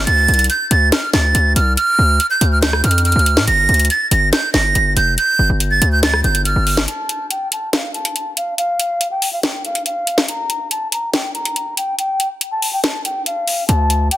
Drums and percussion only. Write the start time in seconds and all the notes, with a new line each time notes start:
0.07 closed hi-hat
0.28 closed hi-hat
0.34 closed hi-hat
0.39 closed hi-hat
0.44 closed hi-hat
0.50 closed hi-hat
0.71 closed hi-hat
0.92 snare, closed hi-hat
1.14 snare
1.35 closed hi-hat
1.56 closed hi-hat
1.77 closed hi-hat
2.20 closed hi-hat
2.41 closed hi-hat
2.62 snare, closed hi-hat
2.73 cross-stick
2.84 closed hi-hat
2.91 closed hi-hat
2.98 closed hi-hat
3.05 closed hi-hat
3.12 closed hi-hat
3.19 closed hi-hat
3.26 closed hi-hat
3.37 snare
3.48 closed hi-hat
3.69 closed hi-hat
3.74 closed hi-hat
3.79 closed hi-hat
3.85 closed hi-hat
3.90 closed hi-hat
4.11 closed hi-hat
4.33 snare, closed hi-hat
4.54 snare
4.75 closed hi-hat
4.97 closed hi-hat
5.18 closed hi-hat
5.60 closed hi-hat
5.82 closed hi-hat
6.03 snare, closed hi-hat
6.14 cross-stick
6.24 closed hi-hat
6.35 closed hi-hat
6.45 closed hi-hat
6.67 open hi-hat
6.77 snare
6.88 closed hi-hat
7.09 closed hi-hat
7.31 closed hi-hat
7.52 closed hi-hat
7.73 snare, closed hi-hat
7.94 closed hi-hat
8.05 closed hi-hat
8.16 closed hi-hat
8.37 closed hi-hat
8.58 closed hi-hat
8.80 closed hi-hat
9.01 closed hi-hat
9.22 open hi-hat
9.43 snare, closed hi-hat
9.65 closed hi-hat
9.75 closed hi-hat
9.86 closed hi-hat
10.07 closed hi-hat
10.18 snare
10.28 closed hi-hat
10.50 closed hi-hat
10.71 closed hi-hat
10.92 closed hi-hat
11.13 snare, closed hi-hat
11.35 closed hi-hat
11.45 closed hi-hat
11.56 closed hi-hat
11.77 closed hi-hat
11.99 closed hi-hat
12.20 closed hi-hat
12.41 closed hi-hat
12.62 open hi-hat
12.84 snare, closed hi-hat
13.05 closed hi-hat
13.26 closed hi-hat
13.47 open hi-hat
13.69 closed hi-hat
13.90 closed hi-hat
14.11 closed hi-hat